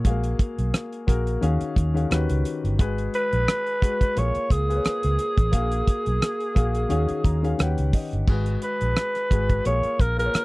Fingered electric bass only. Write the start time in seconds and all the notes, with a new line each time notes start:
0.05 A#1
0.58 B1
1.08 A#1
1.43 D#2
1.61 muted fingered electric bass stroke
1.77 D#2
2.11 D#2
2.30 C#2
2.64 G1
2.80 G#1
3.33 A#1
4.17 A#1
4.36 muted fingered electric bass stroke
4.51 C#2
4.86 muted fingered electric bass stroke
5.04 C#2
5.38 A1
5.53 A#1
6.07 B1
6.57 A#1
6.91 D#2
7.10 muted fingered electric bass stroke
7.25 D#2
7.60 D#2
7.79 C#2
8.13 G1
8.28 G#1
8.82 A#1
9.31 G#1
9.66 A#1
9.85 muted fingered electric bass stroke
10.00 A#1
10.35 muted fingered electric bass stroke